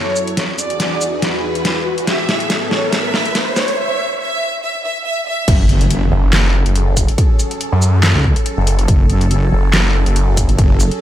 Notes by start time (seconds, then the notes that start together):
Already playing: F#2 F#3 E4 A4 C#5, riser
0.16 shaker
0.27 closed hi-hat
0.37 E2 E3 F#4 G#4, snare, closed hi-hat
0.59 D5, closed hi-hat, shaker
0.70 closed hi-hat
0.80 snare, closed hi-hat
1.01 shaker
1.22 B4, snare, closed hi-hat
1.55 closed hi-hat
1.65 snare, closed hi-hat
1.98 closed hi-hat
2.07 A2 B3 A4 E5, snare, closed hi-hat
2.29 snare, closed hi-hat
2.40 closed hi-hat
2.50 snare, closed hi-hat
2.71 C#5, snare
2.93 E5, snare, closed hi-hat
3.14 snare
3.25 closed hi-hat
3.35 snare, closed hi-hat
3.56 C#5, snare, shaker
3.68 closed hi-hat
3.78 E5
4.20 E5
4.63 E5
4.84 E5
5.05 E5
5.27 E5
5.48 F#1 F#3 C#4 G#4 A4, kick, closed hi-hat, crash, impact
5.69 closed hi-hat
5.81 closed hi-hat
5.91 closed hi-hat
6.12 F#1
6.33 F#1, snare, clap, closed hi-hat
6.66 F#1, closed hi-hat
6.76 closed hi-hat
6.97 kick, open hi-hat, shaker
7.08 closed hi-hat
7.18 kick, closed hi-hat
7.39 closed hi-hat, shaker
7.51 closed hi-hat
7.61 closed hi-hat
7.72 F#2
7.82 shaker
8.03 snare, clap, closed hi-hat
8.15 C#2
8.24 kick
8.36 closed hi-hat
8.46 closed hi-hat
8.57 F#1
8.67 open hi-hat
8.79 closed hi-hat
8.88 F#1, kick, closed hi-hat
9.10 closed hi-hat
9.21 closed hi-hat
9.31 closed hi-hat
9.52 F#1
9.73 F#1, snare, clap, closed hi-hat
10.06 F#1, closed hi-hat
10.16 closed hi-hat
10.37 kick, open hi-hat, shaker
10.49 F#1, closed hi-hat
10.58 kick, closed hi-hat
10.80 closed hi-hat, shaker
10.91 closed hi-hat